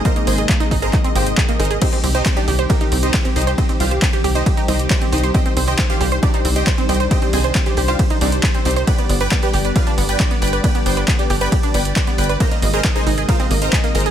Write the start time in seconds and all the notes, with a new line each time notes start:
Already playing: C3 G#3 A#3 D#4
0.05 A#3 A#4 C5 D#5 A#5, kick, closed hi-hat
0.16 A#3 D#5, closed hi-hat
0.27 G#1 A#3 C5 D#5 G#5 C6, open hi-hat
0.38 G#4 D#5, closed hi-hat
0.49 A#3, kick, clap, closed hi-hat
0.60 D#4 D#5, closed hi-hat
0.71 G#1 D#4 D#5, kick, open hi-hat
0.82 G#4 A#4 C5 D#5 A#5, closed hi-hat
0.93 D#4 D#5, kick, clap, closed hi-hat
1.04 C4 D#5, closed hi-hat
1.15 G#1 A#3 G4 C5 D#5 G5, open hi-hat
1.26 D#5, closed hi-hat
1.37 G#4 D#5, kick, clap, closed hi-hat
1.48 A#3 D#5, closed hi-hat
1.59 G#1 D#4 G#4 A#4 C5 D#5, open hi-hat
1.65 closed hi-hat
1.70 G#4 D#5, closed hi-hat
1.81 D#3 G3 C4 D#4 G4 C5 D#5, kick, closed hi-hat, crash, ride
1.93 C4 G4, closed hi-hat
2.04 C2 C4 G4, open hi-hat
2.15 D#4 G4 C5 D#5, closed hi-hat
2.26 C4 G4, kick, clap, closed hi-hat, ride
2.36 D4 D#4 G4 D5, closed hi-hat
2.47 C2 G4, open hi-hat
2.58 G4 C5, closed hi-hat
2.69 A#3 D#4 G4 A#4, kick, closed hi-hat, ride
2.81 D#4 G4, closed hi-hat
2.92 C2 C4 G4, open hi-hat
3.03 D#4 G4 C5 D#5, closed hi-hat
3.14 G4 C5, kick, clap, closed hi-hat, ride
3.25 C4 G4, closed hi-hat
3.36 C2 D#4 G4 C5 D#5, open hi-hat
3.42 closed hi-hat
3.47 G4 C5, closed hi-hat
3.58 C4 D#4 G4 C5 D#5, kick, closed hi-hat, ride
3.69 C4 G4, closed hi-hat
3.80 C2 C4 F4 G4 C5 F5, open hi-hat
3.91 G4 C5, closed hi-hat
4.02 C4, kick, clap, closed hi-hat, ride
4.13 G4, closed hi-hat
4.24 C2 G4, open hi-hat
4.35 D#4 G4 C5 D#5, closed hi-hat
4.46 G4, kick, closed hi-hat, ride
4.57 D#4 G4, closed hi-hat
4.68 C2 C4 D#4 G4 C5 D#5, open hi-hat
4.79 G4, closed hi-hat
4.90 G4 C5, kick, clap, closed hi-hat, ride
5.01 C4 G4, closed hi-hat
5.12 C2 D#4 G4 C5 D#5, open hi-hat
5.18 closed hi-hat
5.23 G4 C5, closed hi-hat
5.34 C4 D4 G4 C5 D#5 G5, kick, closed hi-hat, ride
5.46 C4 C5, closed hi-hat
5.56 C2 C4 C5, open hi-hat
5.67 G4 C5 D#5 G5, closed hi-hat
5.79 C4 C5, kick, clap, closed hi-hat, ride
5.90 F4 G4 C5 F5, closed hi-hat
6.01 C2 G4 C5, open hi-hat
6.12 C5, closed hi-hat
6.23 D4 D#4 G4 D5, kick, closed hi-hat, ride
6.34 D#4 C5, closed hi-hat
6.45 C2 C4 C5, open hi-hat
6.56 G4 C5 D#5 G5, closed hi-hat
6.67 C5, kick, clap, closed hi-hat, ride
6.78 C4 C5, closed hi-hat
6.89 C2 G4 C5 D#5 G5, open hi-hat
6.95 closed hi-hat
7.00 C5, closed hi-hat
7.11 C4 G4 C5 D#5 G5, kick, closed hi-hat, ride
7.22 C4 C5, closed hi-hat
7.33 C2 C4 G#4 C5 D#5 G#5, open hi-hat
7.44 C5, closed hi-hat
7.55 C4, kick, clap, closed hi-hat, ride
7.66 G4 C5, closed hi-hat
7.77 C2 G4 C5, open hi-hat
7.88 F4 G4 C5 F5, closed hi-hat
7.99 G4, kick, closed hi-hat, ride
8.10 D#4 C5, closed hi-hat
8.21 C2 C4 D4 D#4 G4 D5, open hi-hat
8.32 C5, closed hi-hat
8.43 C5, kick, clap, closed hi-hat, ride
8.54 C4 C5, closed hi-hat
8.65 C2 C4 D#4 G4 C5, open hi-hat
8.71 closed hi-hat
8.76 C5, closed hi-hat
8.87 D3 B3 G4 B4 D5 G5 B5, kick, closed hi-hat, ride
8.98 B3 D5, closed hi-hat
9.09 G1 B3 D5, open hi-hat
9.21 B4 D5 G5 B5, closed hi-hat
9.31 B3 D5, kick, clap, closed hi-hat, ride
9.43 G4 B4 D5 G5, closed hi-hat
9.54 G1 G4 D5, open hi-hat
9.65 B4 D5, closed hi-hat
9.76 F4 G4 B4 D5 F5, kick, closed hi-hat, ride
9.87 D4 D5, closed hi-hat
9.98 G1 B3 D5, open hi-hat
10.09 B4 D5 G5 B5, closed hi-hat
10.20 B4 D5, kick, clap, closed hi-hat, ride
10.31 B3 D5, closed hi-hat
10.42 G1 B4 D5 G5 B5, open hi-hat
10.48 closed hi-hat
10.53 B4 D5, closed hi-hat
10.64 B3 B4 D5 G5 B5, kick, closed hi-hat, ride
10.75 B3 D5, closed hi-hat
10.86 G1 B3 C5 D5 G5 C6, open hi-hat
10.97 B4 D5, closed hi-hat
11.08 B3, kick, clap, closed hi-hat, ride
11.19 G4 D5, closed hi-hat
11.30 G1 G4 D5, open hi-hat
11.41 B4 D5 G5 B5, closed hi-hat
11.52 G4, kick, closed hi-hat, ride
11.63 D4 D5, closed hi-hat
11.74 G1 B3 B4 D5 G5 B5, open hi-hat
11.85 D5, closed hi-hat
11.96 B4 D5, kick, clap, closed hi-hat, ride
12.07 B3 D5, closed hi-hat
12.18 G1 B4 D5 G5 B5, open hi-hat
12.24 closed hi-hat
12.29 B4 D5, closed hi-hat
12.40 C3 G#3 A#3 D#4 A#4 C5 D#5 A#5, kick, closed hi-hat, ride
12.51 A#3 D#5, closed hi-hat
12.62 G#1 A#3 D#5, open hi-hat
12.73 G#4 A#4 C5 D#5 A#5, closed hi-hat
12.84 A#3 D#5, kick, clap, closed hi-hat, ride
12.96 D#4 G#4 C5 D#5 G#5, closed hi-hat
13.07 G#1 D#4 D#5, open hi-hat
13.18 G#4 D#5, closed hi-hat
13.29 D#4 F4 A#4 C5 F5, kick, closed hi-hat, ride
13.40 C4 D#5, closed hi-hat
13.51 G#1 A#3 D#5, open hi-hat
13.62 A#4 C5 D#5 A#5, closed hi-hat
13.73 G#4 D#5, kick, clap, closed hi-hat, ride
13.84 A#3 D#5, closed hi-hat
13.95 G#1 G#4 A#4 C5 D#5 A#5, open hi-hat
14.00 closed hi-hat
14.06 G#4 D#5, closed hi-hat